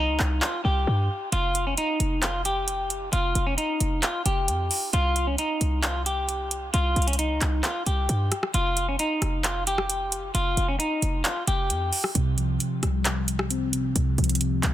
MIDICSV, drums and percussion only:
0, 0, Header, 1, 2, 480
1, 0, Start_track
1, 0, Tempo, 451128
1, 1409, Time_signature, 4, 2, 24, 8
1, 15681, End_track
2, 0, Start_track
2, 0, Title_t, "Drums"
2, 209, Note_on_c, 9, 39, 75
2, 315, Note_off_c, 9, 39, 0
2, 448, Note_on_c, 9, 39, 114
2, 555, Note_off_c, 9, 39, 0
2, 1408, Note_on_c, 9, 42, 77
2, 1515, Note_off_c, 9, 42, 0
2, 1649, Note_on_c, 9, 42, 60
2, 1755, Note_off_c, 9, 42, 0
2, 1888, Note_on_c, 9, 42, 87
2, 1994, Note_off_c, 9, 42, 0
2, 2128, Note_on_c, 9, 42, 86
2, 2235, Note_off_c, 9, 42, 0
2, 2368, Note_on_c, 9, 39, 114
2, 2368, Note_on_c, 9, 42, 79
2, 2474, Note_off_c, 9, 42, 0
2, 2475, Note_off_c, 9, 39, 0
2, 2608, Note_on_c, 9, 42, 86
2, 2715, Note_off_c, 9, 42, 0
2, 2848, Note_on_c, 9, 42, 84
2, 2954, Note_off_c, 9, 42, 0
2, 3088, Note_on_c, 9, 42, 74
2, 3194, Note_off_c, 9, 42, 0
2, 3328, Note_on_c, 9, 42, 76
2, 3434, Note_off_c, 9, 42, 0
2, 3568, Note_on_c, 9, 42, 60
2, 3674, Note_off_c, 9, 42, 0
2, 3808, Note_on_c, 9, 42, 88
2, 3915, Note_off_c, 9, 42, 0
2, 4048, Note_on_c, 9, 42, 86
2, 4155, Note_off_c, 9, 42, 0
2, 4288, Note_on_c, 9, 39, 115
2, 4288, Note_on_c, 9, 42, 81
2, 4394, Note_off_c, 9, 42, 0
2, 4395, Note_off_c, 9, 39, 0
2, 4528, Note_on_c, 9, 42, 84
2, 4635, Note_off_c, 9, 42, 0
2, 4768, Note_on_c, 9, 42, 82
2, 4875, Note_off_c, 9, 42, 0
2, 5008, Note_on_c, 9, 46, 83
2, 5115, Note_off_c, 9, 46, 0
2, 5248, Note_on_c, 9, 42, 76
2, 5355, Note_off_c, 9, 42, 0
2, 5489, Note_on_c, 9, 42, 60
2, 5595, Note_off_c, 9, 42, 0
2, 5728, Note_on_c, 9, 42, 86
2, 5835, Note_off_c, 9, 42, 0
2, 5968, Note_on_c, 9, 42, 86
2, 6075, Note_off_c, 9, 42, 0
2, 6208, Note_on_c, 9, 39, 114
2, 6208, Note_on_c, 9, 42, 78
2, 6314, Note_off_c, 9, 39, 0
2, 6314, Note_off_c, 9, 42, 0
2, 6448, Note_on_c, 9, 42, 85
2, 6555, Note_off_c, 9, 42, 0
2, 6688, Note_on_c, 9, 42, 86
2, 6795, Note_off_c, 9, 42, 0
2, 6928, Note_on_c, 9, 42, 72
2, 7035, Note_off_c, 9, 42, 0
2, 7168, Note_on_c, 9, 42, 80
2, 7275, Note_off_c, 9, 42, 0
2, 7409, Note_on_c, 9, 42, 37
2, 7469, Note_off_c, 9, 42, 0
2, 7469, Note_on_c, 9, 42, 46
2, 7529, Note_off_c, 9, 42, 0
2, 7529, Note_on_c, 9, 42, 54
2, 7589, Note_off_c, 9, 42, 0
2, 7589, Note_on_c, 9, 42, 61
2, 7649, Note_off_c, 9, 42, 0
2, 7649, Note_on_c, 9, 42, 91
2, 7755, Note_off_c, 9, 42, 0
2, 7889, Note_on_c, 9, 39, 74
2, 7889, Note_on_c, 9, 42, 83
2, 7995, Note_off_c, 9, 42, 0
2, 7996, Note_off_c, 9, 39, 0
2, 8128, Note_on_c, 9, 39, 113
2, 8128, Note_on_c, 9, 42, 78
2, 8235, Note_off_c, 9, 39, 0
2, 8235, Note_off_c, 9, 42, 0
2, 8368, Note_on_c, 9, 42, 84
2, 8475, Note_off_c, 9, 42, 0
2, 8608, Note_on_c, 9, 42, 82
2, 8715, Note_off_c, 9, 42, 0
2, 8848, Note_on_c, 9, 42, 76
2, 8849, Note_on_c, 9, 37, 66
2, 8955, Note_off_c, 9, 37, 0
2, 8955, Note_off_c, 9, 42, 0
2, 8969, Note_on_c, 9, 37, 91
2, 9076, Note_off_c, 9, 37, 0
2, 9088, Note_on_c, 9, 42, 76
2, 9194, Note_off_c, 9, 42, 0
2, 9328, Note_on_c, 9, 42, 62
2, 9435, Note_off_c, 9, 42, 0
2, 9568, Note_on_c, 9, 42, 91
2, 9674, Note_off_c, 9, 42, 0
2, 9808, Note_on_c, 9, 37, 75
2, 9808, Note_on_c, 9, 42, 86
2, 9915, Note_off_c, 9, 37, 0
2, 9915, Note_off_c, 9, 42, 0
2, 10048, Note_on_c, 9, 39, 112
2, 10048, Note_on_c, 9, 42, 77
2, 10154, Note_off_c, 9, 42, 0
2, 10155, Note_off_c, 9, 39, 0
2, 10288, Note_on_c, 9, 42, 86
2, 10395, Note_off_c, 9, 42, 0
2, 10408, Note_on_c, 9, 37, 98
2, 10514, Note_off_c, 9, 37, 0
2, 10529, Note_on_c, 9, 42, 82
2, 10635, Note_off_c, 9, 42, 0
2, 10769, Note_on_c, 9, 42, 74
2, 10875, Note_off_c, 9, 42, 0
2, 11009, Note_on_c, 9, 42, 78
2, 11115, Note_off_c, 9, 42, 0
2, 11249, Note_on_c, 9, 42, 58
2, 11355, Note_off_c, 9, 42, 0
2, 11489, Note_on_c, 9, 42, 86
2, 11595, Note_off_c, 9, 42, 0
2, 11729, Note_on_c, 9, 42, 86
2, 11836, Note_off_c, 9, 42, 0
2, 11969, Note_on_c, 9, 39, 112
2, 11969, Note_on_c, 9, 42, 79
2, 12076, Note_off_c, 9, 39, 0
2, 12076, Note_off_c, 9, 42, 0
2, 12209, Note_on_c, 9, 42, 85
2, 12315, Note_off_c, 9, 42, 0
2, 12449, Note_on_c, 9, 42, 86
2, 12556, Note_off_c, 9, 42, 0
2, 12689, Note_on_c, 9, 46, 80
2, 12795, Note_off_c, 9, 46, 0
2, 12810, Note_on_c, 9, 37, 95
2, 12916, Note_off_c, 9, 37, 0
2, 12929, Note_on_c, 9, 42, 77
2, 13035, Note_off_c, 9, 42, 0
2, 13169, Note_on_c, 9, 42, 59
2, 13276, Note_off_c, 9, 42, 0
2, 13409, Note_on_c, 9, 42, 87
2, 13516, Note_off_c, 9, 42, 0
2, 13649, Note_on_c, 9, 37, 75
2, 13649, Note_on_c, 9, 42, 89
2, 13755, Note_off_c, 9, 42, 0
2, 13756, Note_off_c, 9, 37, 0
2, 13889, Note_on_c, 9, 39, 116
2, 13889, Note_on_c, 9, 42, 80
2, 13995, Note_off_c, 9, 42, 0
2, 13996, Note_off_c, 9, 39, 0
2, 14129, Note_on_c, 9, 42, 87
2, 14236, Note_off_c, 9, 42, 0
2, 14248, Note_on_c, 9, 37, 100
2, 14355, Note_off_c, 9, 37, 0
2, 14370, Note_on_c, 9, 42, 85
2, 14476, Note_off_c, 9, 42, 0
2, 14609, Note_on_c, 9, 42, 74
2, 14716, Note_off_c, 9, 42, 0
2, 14849, Note_on_c, 9, 42, 80
2, 14956, Note_off_c, 9, 42, 0
2, 15090, Note_on_c, 9, 42, 37
2, 15149, Note_off_c, 9, 42, 0
2, 15149, Note_on_c, 9, 42, 45
2, 15209, Note_off_c, 9, 42, 0
2, 15209, Note_on_c, 9, 42, 53
2, 15270, Note_off_c, 9, 42, 0
2, 15270, Note_on_c, 9, 42, 64
2, 15329, Note_off_c, 9, 42, 0
2, 15329, Note_on_c, 9, 42, 92
2, 15436, Note_off_c, 9, 42, 0
2, 15569, Note_on_c, 9, 42, 88
2, 15570, Note_on_c, 9, 39, 75
2, 15676, Note_off_c, 9, 39, 0
2, 15676, Note_off_c, 9, 42, 0
2, 15681, End_track
0, 0, End_of_file